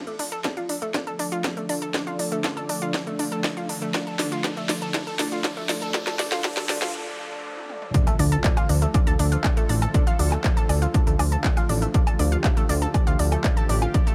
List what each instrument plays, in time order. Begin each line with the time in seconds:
Already playing: synth drone D3 A3, analog synth pad F3 A3 D4 A4 D5, riser
0.07 synth arpeggio sound A3, closed hi-hat
0.19 synth arpeggio sound D4, open hi-hat
0.32 synth arpeggio sound A4, closed hi-hat
0.44 synth arpeggio sound D4, kick, snare, closed hi-hat
0.57 synth arpeggio sound F4, closed hi-hat
0.69 synth arpeggio sound D4, open hi-hat
0.82 synth arpeggio sound A3, closed hi-hat
0.94 synth arpeggio sound D4, kick, snare, closed hi-hat
1.07 synth arpeggio sound A4, closed hi-hat
1.19 synth arpeggio sound D4, open hi-hat
1.32 synth arpeggio sound F4, closed hi-hat
1.44 synth arpeggio sound D4, kick, snare, closed hi-hat
1.57 synth arpeggio sound A3, closed hi-hat
1.69 synth arpeggio sound D4, open hi-hat
1.82 synth arpeggio sound A4, closed hi-hat
1.94 synth arpeggio sound D4, kick, snare, closed hi-hat
2.07 synth arpeggio sound F4, closed hi-hat
2.19 synth arpeggio sound D4, open hi-hat
2.32 synth arpeggio sound A3, closed hi-hat
2.44 synth arpeggio sound D4, kick, snare, closed hi-hat
2.57 synth arpeggio sound A4, closed hi-hat
2.69 synth arpeggio sound D4, open hi-hat
2.82 synth arpeggio sound F4, closed hi-hat
2.94 synth arpeggio sound D4, kick, snare, closed hi-hat
3.07 synth arpeggio sound A3, closed hi-hat
3.19 synth arpeggio sound D4, open hi-hat
3.32 synth arpeggio sound A4, closed hi-hat
3.44 synth arpeggio sound D4, kick, snare, closed hi-hat
3.57 synth arpeggio sound F4, closed hi-hat
3.69 synth arpeggio sound D4, open hi-hat
3.82 synth arpeggio sound A3, closed hi-hat
3.94 synth arpeggio sound D4, kick, snare, closed hi-hat
4.07 synth arpeggio sound A4, closed hi-hat
4.19 synth arpeggio sound D4, snare, open hi-hat
4.32 synth arpeggio sound F4, closed hi-hat
4.44 synth arpeggio sound D4, kick, snare, closed hi-hat
4.57 synth arpeggio sound A3, closed hi-hat
4.69 synth arpeggio sound D4, snare, open hi-hat
4.82 synth arpeggio sound A4, closed hi-hat
4.94 synth arpeggio sound D4, kick, snare, closed hi-hat
5.07 synth arpeggio sound A4, closed hi-hat
5.19 synth arpeggio sound D4, snare, open hi-hat
5.32 synth arpeggio sound F4, closed hi-hat
5.44 synth arpeggio sound D4, kick, snare, closed hi-hat
5.57 synth arpeggio sound A3, closed hi-hat
5.69 synth arpeggio sound D4, snare, open hi-hat
5.82 synth arpeggio sound A4, closed hi-hat
5.94 synth arpeggio sound D4, kick, snare, closed hi-hat, noise sweep
6.07 synth arpeggio sound A4, snare, closed hi-hat
6.19 synth arpeggio sound D4, snare, open hi-hat
6.32 synth arpeggio sound F4, snare, closed hi-hat
6.44 synth arpeggio sound D4, kick, snare, closed hi-hat
6.57 synth arpeggio sound A4, snare, closed hi-hat
6.69 synth arpeggio sound D4, snare, open hi-hat
6.82 synth arpeggio sound F4, snare, closed hi-hat
7.57 high tom
7.69 mid tom
7.82 mid tom
7.94 analog synth pad D3 F3 A3 F4 A4, synth arpeggio sound D4 D5, kick, closed hi-hat, impact
8.07 synth arpeggio sound A3 A4, closed hi-hat, low woodblock
8.19 analog synth bass D2, synth arpeggio sound D4 D5, open hi-hat
8.32 synth arpeggio sound A4 A5, closed hi-hat
8.44 synth arpeggio sound D4 D5, kick, clap, closed hi-hat
8.57 synth arpeggio sound F4 F5, closed hi-hat, low woodblock
8.69 analog synth bass D2, synth arpeggio sound D4 D5, open hi-hat
8.82 synth arpeggio sound A3 A4, closed hi-hat
8.94 synth arpeggio sound D4 D5, kick, closed hi-hat, low woodblock
9.07 analog synth bass D2, synth arpeggio sound A4 A5, closed hi-hat
9.19 analog synth bass D2, synth arpeggio sound D4 D5, open hi-hat
9.32 synth arpeggio sound F4 F5, closed hi-hat
9.44 synth arpeggio sound D4 D5, kick, clap, closed hi-hat, low woodblock
9.57 synth arpeggio sound A3 A4, closed hi-hat
9.69 analog synth bass A1, synth arpeggio sound D4 D5, open hi-hat
9.82 synth arpeggio sound A4 A5, closed hi-hat, low woodblock
9.94 synth arpeggio sound D4 D5, kick, closed hi-hat
10.07 synth arpeggio sound F4 F5, closed hi-hat
10.19 analog synth bass D2, synth arpeggio sound D4 D5, open hi-hat
10.32 synth arpeggio sound A3 A4, clap, closed hi-hat, low woodblock
10.44 synth arpeggio sound D4 D5, kick, clap, closed hi-hat
10.57 synth arpeggio sound A4 A5, closed hi-hat
10.69 analog synth bass D2, synth arpeggio sound D4 D5, open hi-hat, low woodblock
10.82 synth arpeggio sound F4 F5, closed hi-hat
10.94 synth arpeggio sound D4 D5, kick, closed hi-hat
11.07 analog synth bass D2, synth arpeggio sound A3 A4, closed hi-hat
11.19 analog synth bass D2, synth arpeggio sound D4 D5, open hi-hat, low woodblock
11.32 synth arpeggio sound A4 A5, closed hi-hat
11.44 synth arpeggio sound D4 D5, kick, clap, closed hi-hat
11.57 synth arpeggio sound F4 F5, closed hi-hat, low woodblock
11.69 analog synth bass A1, synth arpeggio sound D4 D5, open hi-hat
11.82 synth arpeggio sound A3 A4, closed hi-hat
11.94 synth arpeggio sound D4 D5, analog synth pad G4, kick, closed hi-hat
12.07 synth arpeggio sound A4 A5, closed hi-hat, low woodblock
12.19 analog synth bass D2, synth arpeggio sound D4 D5, open hi-hat
12.32 synth arpeggio sound F4 F5, closed hi-hat
12.44 synth arpeggio sound D4 D5, kick, clap, closed hi-hat, low woodblock
12.57 synth arpeggio sound A3 A4, closed hi-hat
12.69 analog synth bass D2, synth arpeggio sound D4 D5, open hi-hat
12.82 synth arpeggio sound A4 A5, closed hi-hat
12.94 synth arpeggio sound D4 D5, kick, closed hi-hat, low woodblock
13.07 analog synth bass D2, synth arpeggio sound F4 F5, closed hi-hat
13.19 analog synth bass D2, synth arpeggio sound D4 D5, open hi-hat
13.32 synth arpeggio sound A3 A4, closed hi-hat, low woodblock
13.44 synth arpeggio sound D4 D5, kick, clap, closed hi-hat
13.57 synth arpeggio sound A4 A5, closed hi-hat
13.69 analog synth bass A1, synth arpeggio sound D4 D5, open hi-hat
13.82 synth arpeggio sound F4 F5, closed hi-hat, low woodblock
13.94 synth arpeggio sound D4 D5, kick, closed hi-hat
14.07 synth arpeggio sound A3 A4, closed hi-hat